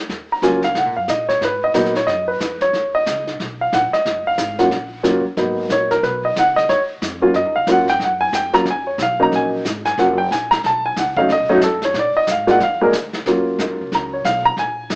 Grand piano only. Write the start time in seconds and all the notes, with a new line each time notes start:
0.32 A#5
0.43 F#3 A#3 C#4 F4 G#5
0.64 F5
0.78 F#5
0.97 F5
1.10 D#5
1.29 C#5
1.45 B4
1.64 D#5
1.74 F#3 A#3 B3 D#4
1.97 C#5
2.07 D#5
2.28 B4
2.62 C#5
2.95 D#5
3.61 F5
3.74 F#5
3.93 D#5
4.27 F5
4.59 F#3 A#3 C#4 F4 F#5
5.03 F#3 A#3 C#4 F4
5.37 F#3 A#3 B3 D#4
5.72 C#5
5.91 A#4
6.03 B4
6.25 D#5
6.39 F#5
6.56 D#5
6.69 C#5
7.21 F#3 A#3 C#4 F4
7.36 D#5
7.56 F5
7.68 F#3 A#3 C#4 F4 F#5
7.90 G5
8.04 F#5
8.21 G#5
8.35 G5
8.53 F#3 A#3 C#4 F4 A#5
8.70 G#5
8.87 C#5
9.02 F5
9.19 F#3 A#3 C#4 D#4 A#5
9.35 G#5
9.85 G#5
9.99 F#3 A#3 C#4 F4 F#5
10.18 G5
10.32 G#5
10.51 A#5
10.66 A5
10.86 G#5
10.99 F#5
11.17 F#3 A3 C#4 D#4 F5
11.32 D#5
11.49 F#3 A3 C#4 D#4 F#4
11.64 A4
11.85 C#5
11.99 D5
12.17 D#5
12.32 F5
12.47 G#3 A#3 D4 F4 F#5
12.63 F5
12.81 G#3 A#3 D4 G#4 A#4
13.27 F#3 A#3 C#4 F4
13.95 A#5
14.13 C#5
14.25 F5
14.45 A#5
14.59 G#5